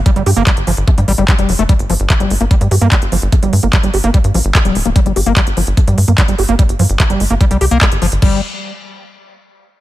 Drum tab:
CC |----------------|----------------|----------------|----------------|
HH |xxoxxxoxxxoxxxox|xxoxxxoxxxoxxxox|xxoxxxoxxxoxxxox|xxoxxxoxxxoxxxox|
CP |----x-------x---|----x-------x---|----x-------x---|----x-------x---|
BD |o---o---o---o---|o---o---o---o---|o---o---o---o---|o---o---o---o---|

CC |----------------|x---------------|
HH |xxoxxxoxxxoxxxox|----------------|
CP |----x-------x---|----------------|
BD |o---o---o---o---|o---------------|